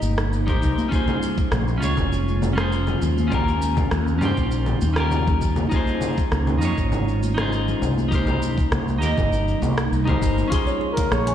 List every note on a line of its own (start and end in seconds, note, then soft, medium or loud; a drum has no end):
0.00 0.63 G1 medium
0.00 0.90 C3 medium
0.00 0.90 G3 medium
0.00 0.90 A#3 medium
0.00 0.12 D#4 medium
0.00 0.90 D#4 medium
0.00 0.13 G4 medium
0.00 0.14 A#4 medium
0.00 0.16 D#5 medium
0.00 high conga medium
0.00 shaker medium
0.18 cross-stick medium
0.18 shaker soft
0.33 shaker soft
0.47 0.88 D#4 medium
0.47 0.88 G4 medium
0.47 0.89 A#4 medium
0.47 0.89 C5 medium
0.47 kick loud
0.47 low conga medium
0.47 shaker soft
0.62 0.72 C2 medium
0.62 kick medium
0.62 shaker medium
0.78 high conga medium
0.78 shaker soft
0.89 3.30 G#3 medium
0.89 5.68 A#3 medium
0.89 1.76 C#4 medium
0.89 8.08 C#4 medium
0.89 1.78 F4 medium
0.89 3.30 F4 medium
0.89 kick loud
0.89 shaker soft
0.93 1.79 G#4 medium
0.93 1.80 C5 medium
1.08 low conga medium
1.08 shaker soft
1.23 shaker medium
1.38 kick loud
1.38 shaker soft
1.52 1.82 A#1 loud
1.52 cross-stick medium
1.52 high conga medium
1.52 low conga medium
1.52 shaker soft
1.68 shaker soft
1.78 2.52 C#4 medium
1.78 2.53 F4 medium
1.82 1.92 C#2 medium
1.82 2.54 G#4 medium
1.82 2.55 C#5 medium
1.82 shaker medium
1.97 2.94 F1 medium
1.97 kick medium
1.97 low conga medium
1.97 shaker soft
2.13 shaker soft
2.28 shaker soft
2.42 high conga medium
2.42 low conga medium
2.42 shaker medium
2.53 3.26 C#4 medium
2.53 3.27 F4 medium
2.58 3.28 G#4 medium
2.58 3.30 C5 medium
2.58 cross-stick medium
2.58 muted conga medium
2.58 shaker soft
2.72 shaker soft
2.87 low conga medium
2.87 shaker soft
3.02 3.84 D#2 medium
3.02 shaker medium
3.18 high conga medium
3.18 shaker soft
3.28 5.69 G3 medium
3.28 4.16 C#4 medium
3.28 5.69 D#4 medium
3.28 4.18 F4 medium
3.28 low conga medium
3.32 4.18 G4 medium
3.32 4.20 A#4 loud
3.32 kick loud
3.32 shaker soft
3.48 shaker soft
3.62 shaker medium
3.77 kick medium
3.77 low conga medium
3.77 shaker soft
3.91 4.22 D#2 medium
3.91 cross-stick medium
3.91 high conga medium
3.91 shaker soft
4.07 shaker soft
4.19 4.32 G2 medium
4.19 4.92 C#4 medium
4.19 4.93 F4 medium
4.19 low conga medium
4.19 shaker medium
4.23 4.94 G4 medium
4.23 4.95 C5 medium
4.37 4.74 A#1 medium
4.37 kick medium
4.37 shaker soft
4.51 shaker soft
4.66 low conga medium
4.66 shaker soft
4.81 5.64 D#2 medium
4.81 muted conga medium
4.81 high conga medium
4.81 shaker medium
4.94 5.66 C#4 medium
4.94 5.68 F4 medium
4.94 cross-stick medium
4.94 shaker soft
4.98 5.69 G4 medium
4.98 5.70 A#4 medium
5.11 low conga medium
5.11 shaker soft
5.27 kick loud
5.27 low conga medium
5.27 shaker soft
5.42 kick soft
5.42 shaker medium
5.56 muted conga medium
5.56 high conga medium
5.56 low conga medium
5.56 shaker soft
5.69 8.09 G#3 medium
5.69 6.57 D#4 medium
5.69 8.09 F4 medium
5.69 6.58 F4 medium
5.69 kick loud
5.69 shaker soft
5.74 6.59 G#4 medium
5.74 6.60 C5 loud
5.87 shaker soft
6.01 low conga medium
6.01 shaker medium
6.18 kick medium
6.18 shaker soft
6.32 6.62 C#2 medium
6.32 cross-stick medium
6.32 high conga medium
6.32 shaker soft
6.47 low conga medium
6.47 shaker soft
6.58 6.72 F2 medium
6.58 7.32 D#4 medium
6.58 7.33 F4 medium
6.58 shaker medium
6.63 7.34 G#4 medium
6.63 7.35 C#5 medium
6.78 7.74 G#1 medium
6.78 kick medium
6.78 shaker soft
6.92 low conga medium
6.92 shaker soft
7.08 shaker soft
7.23 high conga medium
7.23 shaker medium
7.34 8.07 D#4 medium
7.34 8.08 F4 medium
7.34 cross-stick medium
7.34 muted conga medium
7.34 low conga medium
7.38 8.09 G#4 medium
7.38 8.10 C5 medium
7.38 shaker soft
7.52 shaker soft
7.68 low conga medium
7.68 shaker soft
7.82 8.64 C2 medium
7.82 low conga medium
7.82 shaker medium
7.98 high conga medium
7.98 shaker soft
8.08 10.49 C3 medium
8.08 10.49 G3 medium
8.08 10.50 A#3 medium
8.08 8.97 D#4 medium
8.08 10.50 D#4 medium
8.08 8.98 G4 medium
8.08 kick loud
8.12 8.99 A#4 medium
8.12 9.00 C5 loud
8.12 shaker soft
8.27 low conga medium
8.27 shaker soft
8.42 shaker medium
8.58 kick medium
8.58 shaker soft
8.72 9.03 C2 medium
8.72 cross-stick medium
8.72 high conga medium
8.72 low conga medium
8.72 shaker soft
8.88 shaker soft
8.98 9.72 D#4 medium
8.98 9.73 G4 medium
8.98 shaker medium
9.03 9.12 D#2 medium
9.03 9.74 A#4 medium
9.03 9.76 D#5 medium
9.18 9.54 G1 medium
9.18 kick medium
9.18 low conga medium
9.18 shaker soft
9.33 shaker soft
9.48 shaker soft
9.62 9.92 C2 medium
9.62 muted conga medium
9.62 high conga medium
9.62 low conga medium
9.62 shaker medium
9.78 cross-stick medium
9.78 shaker soft
9.92 10.12 C2 medium
9.92 shaker soft
10.05 10.47 D#4 medium
10.05 10.48 G4 medium
10.05 10.49 A#4 medium
10.05 10.49 C5 loud
10.05 kick loud
10.05 low conga medium
10.05 shaker soft
10.22 10.42 G1 medium
10.22 kick medium
10.22 shaker medium
10.38 muted conga medium
10.38 high conga medium
10.38 shaker soft
10.48 11.35 A#3 medium
10.48 11.35 C#4 medium
10.48 11.35 F4 medium
10.52 11.35 G#3 medium
10.52 10.67 G#4 medium
10.52 11.35 G#4 medium
10.52 11.35 C6 loud
10.52 kick loud
10.52 closed hi-hat medium
10.52 shaker medium
10.67 10.75 C#5 medium
10.67 shaker soft
10.81 10.96 G#4 medium
10.93 11.15 A#4 medium
10.97 11.10 F5 medium
10.97 kick loud
10.97 closed hi-hat soft
10.97 low conga medium
10.97 shaker medium
11.12 11.35 A#1 loud
11.12 11.27 G#4 loud
11.12 11.35 C#5 medium
11.12 cross-stick medium
11.12 high conga medium
11.12 shaker medium
11.27 11.35 G#5 medium
11.27 closed hi-hat medium
11.27 shaker soft